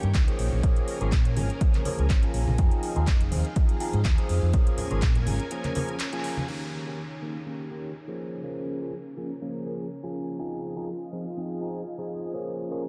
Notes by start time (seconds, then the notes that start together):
Already playing: D#4 C#5 G5
0.03 G2, closed hi-hat, shaker
0.14 C#2, kick, clap, closed hi-hat
0.27 F3 A#3 C#4 G#4, closed hi-hat
0.39 A#1 C#4 A#4 G#5, open hi-hat, shaker
0.52 A#1, shaker
0.63 A#1 F3 A#3 C#4 G#4, kick, closed hi-hat
0.76 closed hi-hat
0.87 open hi-hat, shaker
1.01 G#1 F3 A#3 C#4 G#4, closed hi-hat, shaker
1.12 A#2, kick, clap, closed hi-hat
1.25 closed hi-hat
1.36 G#1 F3 A#3 C#4 G#4, open hi-hat, high conga, shaker
1.50 closed hi-hat, shaker
1.61 F3 A#3 C#4 G#4, kick, closed hi-hat
1.74 clap, closed hi-hat, high conga
1.85 F3 A#3 C#4 G#4, open hi-hat, high conga, shaker
1.97 C#2, closed hi-hat, shaker
2.10 G#1, kick, clap, closed hi-hat
2.22 F3 A#3 C#4 G#4, closed hi-hat
2.34 A#1, open hi-hat, shaker
2.47 A#1, high conga, shaker
2.58 F2 F3 C4 D#4 G#4 F5, kick, closed hi-hat
2.71 closed hi-hat
2.83 open hi-hat, shaker
2.96 D#2 F3 C4 D#4 G#4, closed hi-hat, shaker
3.07 F1, kick, clap, closed hi-hat
3.21 closed hi-hat
3.31 D#2 F3 C4 D#4 G#4, open hi-hat, shaker
3.45 closed hi-hat, shaker
3.56 F3 C4 D#4 G#4, kick, closed hi-hat, shaker
3.69 closed hi-hat
3.80 F3 C4 D#4 G#4, open hi-hat, shaker
3.93 G#2, closed hi-hat, shaker
4.05 D#2, kick, clap, closed hi-hat
4.17 F3 C4 D#4 G#4, closed hi-hat
4.29 F2, open hi-hat, shaker
4.42 F2, shaker
4.53 A#1 F3 A#3 C#4 G#4 A#4 G#5, kick, closed hi-hat, shaker
4.67 closed hi-hat
4.78 open hi-hat, low conga, shaker
4.90 G#1 F3 A#3 C#4 G#4, closed hi-hat, shaker
5.02 A#2, kick, clap, closed hi-hat
5.15 closed hi-hat, low conga
5.26 G#1 F3 A#3 C#4 G#4, open hi-hat, high conga, shaker
5.39 closed hi-hat, shaker
5.50 F3 A#3 C#4 G#4, closed hi-hat, shaker
5.64 clap, closed hi-hat, high conga
5.75 F3 A#3 C#4 G#4, open hi-hat, high conga, shaker
5.88 closed hi-hat, shaker
6.00 clap, closed hi-hat, shaker
6.12 F3 A#3 C#4 G#4, closed hi-hat
6.24 open hi-hat, shaker
6.37 high conga, shaker
6.48 D#3 A#3 C#4 D#4 C#5 G5, crash
6.86 D#3 A#3 C#4 G4
7.22 D#3 A#3 C#4 G4
7.46 D#3 A#3 C#4 G4
7.70 D#3 A#3 C#4 G4
8.07 F3 A#3 C#4 G#4
8.19 C#4 A#4 G#5
8.44 F3 A#3 C#4 G#4
8.81 F3 A#3 C#4 G#4
9.17 F3 A#3 C#4 G#4
9.41 F3 A#3 C#4 G#4
9.66 F3 A#3 C#4 G#4
10.03 F3 A#3 C#4 G#4
10.39 F3 C4 D#4 F4 G#4 D#5
10.76 F3 C4 D#4 G#4
11.12 F3 C4 D#4 G#4
11.37 F3 C4 D#4 G#4
11.61 F3 C4 D#4 G#4
11.98 F3 C4 D#4 G#4
12.34 F3 A#3 C#4 G#4 A#4
12.71 F3 A#3 C#4 G#4